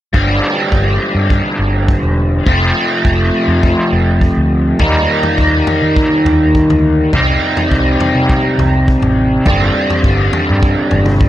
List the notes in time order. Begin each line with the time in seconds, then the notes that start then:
0.14 G1 G2 D3 G3 C4 D4, kick
0.72 G1, kick
1.15 G2
1.30 kick
1.59 G1
1.88 kick
2.03 E1
2.46 F1 F2 C3 F3 A3 C4, kick
3.05 F1, kick
3.48 F2
3.63 kick
3.92 F1
4.21 kick
4.37 D2
4.79 D#2 D#3 G3 A#3 D#4, kick, floor tom
5.23 floor tom
5.38 D#2, kick
5.67 floor tom
5.82 D#3
5.97 kick
6.25 D#2, floor tom
6.55 kick
6.69 D2, floor tom
7.13 C2 C3 G3 C4 D#4, kick, floor tom
7.57 floor tom
7.71 C2, kick
8.00 floor tom
8.14 C3
8.29 kick
8.58 C2, floor tom
8.88 kick
9.02 A1, floor tom
9.45 G1 G2 D3 G3 C4 D4, kick, floor tom
9.90 floor tom
10.03 G1, kick
10.33 floor tom
10.50 G2
10.63 kick
10.91 G1, floor tom
11.06 mid tom
11.21 kick